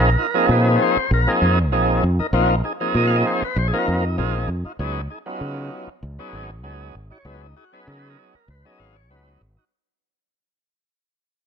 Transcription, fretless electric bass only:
Already playing: A#1
0.49 A#2
0.97 muted fretless electric bass stroke
1.11 A#1
1.42 F2
1.72 A#1
2.03 F2
2.20 muted fretless electric bass stroke
2.33 A#1
2.95 A#2
3.42 muted fretless electric bass stroke
3.56 A#1
3.88 F2
4.18 A#1
4.48 F2
4.65 muted fretless electric bass stroke
4.79 C#2
5.41 C#3
5.87 muted fretless electric bass stroke
6.03 C#2
6.33 G#1
6.64 C#2
6.95 G#1
7.25 C#2
7.88 C#3
8.35 muted fretless electric bass stroke
8.48 C#2
8.80 G#1
9.10 C#2
9.41 G#1

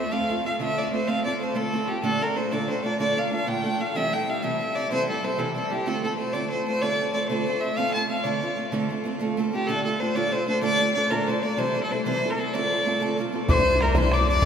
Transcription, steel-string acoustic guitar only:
Already playing: A3 C4
0.00 F4 A4
0.11 D3 A3 C4 F4 A4
0.29 A3 C4 F4 A4
0.43 A3 C4 F4 A4
0.60 D3 A3 C4 F4 A4
0.77 A3 C4 F4 A4
0.92 A3 C4 F4 A4
1.07 D3 A3 C4 F4 A4
1.24 A3 C4 F4 A4
1.40 A3 C4 F4 A4
1.54 D3 A3 C4 F4 A4
1.73 A3 C4 F4 A4
1.87 A3 C4 F4 A4
2.03 A#2 D3 A3 D4 F4 A4
2.20 A3 D4 F4 A4
2.35 A3 D4 F4 A4
2.51 A#2 D3 A3 D4 F4 A4
2.68 A3 D4 F4 A4
2.83 A3 D4 F4 A4
2.99 A#2 D3 A3 D4 F4 A4
3.16 A3 D4 F4 A4
3.30 A3 D4 F4 A4
3.46 A#2 D3 A3 D4 F4 A4
3.63 A3 D4 F4 A4
3.79 A3 D4 F4 A4
3.95 C3 E3 G3 C4 E4 A4
4.12 G3 C4 E4 A4
4.27 G3 C4 E4 A4
4.42 C3 E3 G3 C4 E4 A4
4.59 G3 C4 E4 A4
4.74 G3 C4 E4 A4
4.90 C3 E3 G3 C4 E4 A4
5.07 G3 C4 E4 A4
5.23 G3 C4 E4 A4
5.38 C3 E3 G3 C4 E4 A4
5.55 G3 C4 E4 A4
5.70 G3 C4 E4 A4
5.86 D3 A3 C4 F4 A4
6.03 A3 C4 F4 A4
6.18 A3 C4 F4 A4
6.33 D3 A3 C4 F4 A4
6.50 A3 C4 F4 A4
6.67 A3 C4 F4 A4
6.82 D3 A3 C4 F4 A4
6.98 A3 C4 F4 A4
7.13 A3 C4 F4 A4
7.29 D3 A3 C4 F4 A4
7.46 A3 C4 F4 A4
7.62 A3 C4 F4 A4
7.77 D3 A3 C4 F4 A4
7.94 A3 C4 F4 A4
8.09 A3 C4 F4 A4
8.24 D3 A3 C4 F4 A4
8.41 A3 C4 F4 A4
8.56 A3 C4 F4 A4
8.72 D3 A3 C4 F4 A4
8.89 A3 C4 F4 A4
9.04 A3 C4 F4 A4
9.19 D3 A3 C4 F4 A4
9.37 A3 C4 F4 A4
9.52 A3 C4 F4 A4
9.68 A#2 D3 A3 D4 F4 A4
9.84 A3 D4 F4 A4
10.00 A3 D4 F4 A4
10.15 A#2 D3 A3 D4 F4 A4
10.31 A3 D4 F4 A4
10.46 A3 D4 F4 A4
10.61 A#2 D3 A3 D4 F4 A4
10.79 A3 D4 F4 A4
10.95 A3 D4 F4 A4
11.10 A#2 D3 A3 D4 F4 A4
11.27 A3 D4 F4 A4
11.43 A3 D4 F4 A4
11.57 C3 E3 G3 C4 E4 A4
11.74 G3 C4 E4 A4
11.89 G3 C4 E4 A4
12.05 C3 E3 G3 C4 E4 A4
12.22 G3 C4 E4 A4
12.38 G3 C4 E4 A4
12.53 D3 A3 C4 F4 A4
12.70 A3 C4 F4 A4
12.85 A3 C4 F4 A4
13.00 D3 A3 C4 F4 A4
13.17 A3 C4 F4 A4
13.33 A3 C4 F4 A4
13.48 C3 E3 G3 D4 E4 C5
13.56 G3 D4 E4 C5
13.73 G3 D4 E4 C5
13.80 G3 D4 E4 C5
13.95 C3 E3 G3 D4 E4 C5
14.03 G3 D4 E4 C5
14.19 G3 D4 E4 C5
14.27 G3 D4 E4 C5
14.42 C3

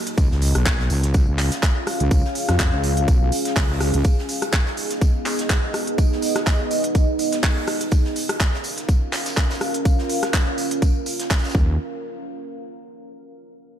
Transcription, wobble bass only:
0.18 C#2
0.31 C#2
0.55 B1
0.90 C#2
1.28 C#2
2.00 C#2
2.11 C#2
2.49 F2
2.73 C#2
3.08 B1
3.56 C#2
3.94 C#2
11.55 D#2

